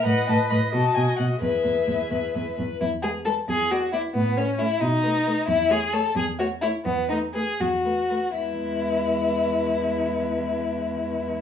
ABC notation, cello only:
X:1
M:6/8
L:1/8
Q:3/8=87
K:E
V:1 name="Cello" clef=bass
A,, A,, A,, B,, B,, B,, | E,, E,, E,, E,, E,, E,, | E,,3 E,,3 | A,,3 B,,3 |
E,,3 E,,3 | E,,3 E,,3 | E,,6- | E,,6 |]